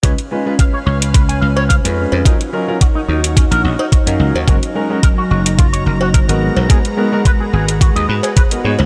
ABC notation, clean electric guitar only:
X:1
M:4/4
L:1/16
Q:"Swing 16ths" 1/4=108
K:C#mix
V:1 name="Clean electric guitar"
c z3 e c c z B g e c e z3 | D z3 F D D z C A F D F z3 | F z3 A F F z E c A F A z3 | G z3 B G G z F d B G B z3 |]